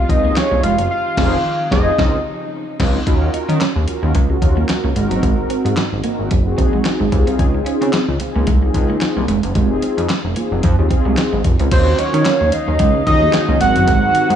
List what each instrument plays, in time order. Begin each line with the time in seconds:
Already playing: string section C3 F3 G#3 F4, analog synth lead F5
0.09 analog synth bass C#2, analog polysynth C4 D#4 F4 G#4, analog synth lead D#5, kick, closed hi-hat
0.25 clean electric guitar A#3
0.36 analog synth lead C#5, muted clean electric guitar stroke, snare, clap, closed hi-hat
0.51 analog synth bass C2, clean electric guitar A#3
0.63 analog synth bass F1, clean electric guitar G#3, analog synth lead F5, closed hi-hat
0.78 analog synth bass F#1, closed hi-hat
0.90 string section D#3, analog synth lead F5
1.17 analog synth bass F1, analog polysynth F3 C4 D#4 F4 G#4, kick, snare, crash
1.71 analog synth bass F1, analog polysynth F3 C4 D#4 F4 G#4, analog synth lead D#5, kick, snare
1.98 analog synth bass C#2, string section C#3 F3 D#4, analog polysynth C4 D#4 F4 G#4, kick, snare
2.79 analog synth bass C#2, analog polysynth C4 D#4 F4, kick, snare, crash
3.06 analog synth bass D#2, analog polysynth C#4 F4 F#4 A#4, kick, closed hi-hat
3.22 muted clean electric guitar stroke
3.34 clean electric guitar D#4, closed hi-hat
3.49 analog synth bass D#3, clean electric guitar C#4, closed hi-hat
3.60 clean electric guitar C#4, snare, clap, closed hi-hat
3.76 analog synth bass D#2
3.87 analog polysynth C#4 F4 F#4 A#4, muted clean electric guitar stroke, closed hi-hat
4.03 analog synth bass D#2, clean electric guitar A#3
4.15 analog synth bass C#2, clean electric guitar G#3, kick, closed hi-hat
4.29 analog polysynth C#4 F4 F#4 A4, muted clean electric guitar stroke
4.37 analog polysynth A#4
4.42 analog synth bass D#2, kick, closed hi-hat
4.57 clean electric guitar A#3
4.69 muted clean electric guitar stroke, snare, clap, closed hi-hat
4.84 analog synth bass C#2, clean electric guitar A#3
4.95 analog synth bass G#1, clean electric guitar G#3, analog polysynth C4 D#4 F#4 A#4, closed hi-hat
5.11 analog synth bass F#1, closed hi-hat
5.23 analog synth bass G#1, clean electric guitar G#3, kick, closed hi-hat
5.50 clean electric guitar C4, closed hi-hat
5.65 analog synth bass G#2, muted clean electric guitar stroke, closed hi-hat
5.76 snare, clap, closed hi-hat
5.92 analog synth bass G#1
6.03 clean electric guitar A#3, analog polysynth C4 D#4 F#4 A#4, closed hi-hat
6.19 analog synth bass G#1
6.31 analog synth bass F#1, muted clean electric guitar stroke, kick, closed hi-hat
6.46 analog polysynth C4 D#4 F#4 G#4
6.58 analog synth bass A#1, clean electric guitar C4, kick, closed hi-hat
6.73 clean electric guitar G#3
6.85 snare, clap, closed hi-hat
7.00 analog synth bass G#1, clean electric guitar G#3
7.12 analog synth bass C#2, analog polysynth C4 D#4 F4 G4, muted clean electric guitar stroke, kick, closed hi-hat
7.19 analog polysynth G#4
7.27 analog synth bass C2, clean electric guitar C4, closed hi-hat
7.39 analog synth bass C#2, kick, closed hi-hat
7.54 muted clean electric guitar stroke
7.66 clean electric guitar C#4, closed hi-hat
7.81 analog synth bass C#3, clean electric guitar C4, closed hi-hat
7.93 clean electric guitar C4, snare, clap, closed hi-hat
8.08 analog synth bass C#2
8.20 analog polysynth C4 D#4 F4 G#4, muted clean electric guitar stroke, closed hi-hat
8.36 analog synth bass C#2, clean electric guitar A#3
8.47 analog synth bass C2, clean electric guitar G#3, kick, closed hi-hat
8.62 analog polysynth C4 D#4 F4 G#4, muted clean electric guitar stroke
8.74 analog synth bass C#2, kick, closed hi-hat
8.90 clean electric guitar A#3
9.01 muted clean electric guitar stroke, snare, clap, closed hi-hat
9.16 analog synth bass C2, clean electric guitar A#3
9.28 analog synth bass F1, clean electric guitar G#3, closed hi-hat
9.43 analog synth bass F#1, closed hi-hat
9.55 analog synth bass F1, clean electric guitar G#3, analog polysynth C4 D#4 F4 G#4, kick, closed hi-hat
9.82 clean electric guitar C4, closed hi-hat
9.97 analog synth bass F2, muted clean electric guitar stroke, closed hi-hat
10.09 snare, clap, closed hi-hat
10.24 analog synth bass F1
10.36 clean electric guitar A#3, analog polysynth C4 D#4 F4 G#4, closed hi-hat
10.52 analog synth bass F1
10.63 analog synth bass F2, muted clean electric guitar stroke, kick, closed hi-hat
10.78 analog synth bass D#2, analog polysynth C4 D#4 F4 G#4
10.90 clean electric guitar C4, kick, closed hi-hat
11.05 analog synth bass C2, clean electric guitar G#3
11.17 snare, clap, closed hi-hat
11.33 analog synth bass G#1, clean electric guitar G#3
11.44 analog synth bass F1, muted clean electric guitar stroke, kick, closed hi-hat
11.59 analog synth bass C#2, clean electric guitar C4, closed hi-hat
11.71 analog synth bass D#2, string section D#3 F#3 A#3 C#4 F5, analog polysynth C#4 F4 F#4 A#4, analog synth lead C5, kick, closed hi-hat, crash
11.87 muted clean electric guitar stroke
11.99 clean electric guitar D#4, analog synth lead C#5, closed hi-hat
12.14 analog synth bass D#3, clean electric guitar C#4, closed hi-hat
12.25 clean electric guitar C#4, snare, clap, closed hi-hat
12.41 analog synth bass D#2
12.52 analog synth lead D#5, muted clean electric guitar stroke, closed hi-hat
12.68 analog synth bass D#2, clean electric guitar A#3
12.79 analog synth bass C#2, clean electric guitar G#3, kick, closed hi-hat
12.95 muted clean electric guitar stroke
13.06 analog synth bass D#2, analog polysynth C#4 F4 F#4 G4, analog synth lead D#5, kick, closed hi-hat
13.13 analog polysynth G#4
13.22 clean electric guitar A#3
13.33 muted clean electric guitar stroke, snare, clap, closed hi-hat
13.49 analog synth bass C#2, clean electric guitar A#3
13.60 analog synth bass G#1, string section C3 G#3 F#4, clean electric guitar G#3, analog polysynth C4 D#4 F#4 A#4, analog synth lead F#5, closed hi-hat
13.76 analog synth bass F#1, closed hi-hat
13.88 analog synth bass G#1, clean electric guitar G#3, analog synth lead F#5, kick, closed hi-hat
14.15 clean electric guitar C4, closed hi-hat
14.30 analog synth bass G#2, muted clean electric guitar stroke, closed hi-hat